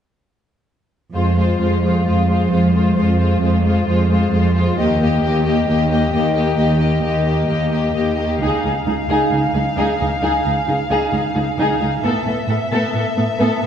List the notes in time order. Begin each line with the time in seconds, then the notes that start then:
1.14 F2 G#3 F4 C5
1.37 G#3 F4 C5
1.60 F2 G#3 F4 C5
1.83 G#3 F4 C5
2.05 F2 G#3 F4 C5
2.27 G#3 F4 C5
2.51 F2 G#3 F4 C5
2.74 G#3 F4 C5
2.96 F2 G#3 F4 C5
3.19 G#3 F4 C5
3.42 F2 G#3 F4 C5
3.64 G#3 F4 C5
3.87 F2 G#3 F4 C5
4.10 G#3 F4 C5
4.32 F2 G#3 F4 C5
4.55 G#3 F4 C5
4.77 D#2 A#3 G4 D#5
5.00 A#3 G4 D#5
5.23 D#2 A#3 G4 D#5
5.45 A#3 G4 D#5
5.67 D#2 A#3 G4 D#5
5.90 A#3 G4 D#5
6.12 D#2 A#3 G4 D#5
6.35 A#3 G4 D#5
6.56 D#2 A#3 G4 D#5
6.79 A#3 G4 D#5
7.02 D#2 A#3 G4 D#5
7.24 A#3 G4 D#5
7.48 D#2 A#3 G4 D#5
7.70 A#3 G4 D#5
7.93 D#2 A#3 G4 D#5
8.16 A#3 G4 D#5
8.40 C#2 D#4 G#4 F5
8.64 C#2 D#4 G#4
8.86 C#2 D#4 G#4
9.09 C#2 D#4 G#4
9.30 C#2 D#4 G#4
9.54 C#2 D#4 G#4
9.76 C#2 D#4 G#4
9.99 C#2 D#4 G#4
10.22 C#2 D#4 G#4
10.45 C#2 D#4 G#4
10.67 C#2 D#4 G#4
10.90 C#2 D#4 G#4
11.12 C#2 D#4 G#4
11.35 C#2 D#4 G#4
11.57 C#2 D#4 G#4
11.80 C#2 D#4 G#4
12.03 A2 B3 A4 E5
12.26 A2 B3 A4
12.48 A2 B3 A4
12.71 A2 B3 A4
12.94 A2 B3 A4
13.17 A2 B3 A4
13.38 A2 B3 A4
13.62 A2 B3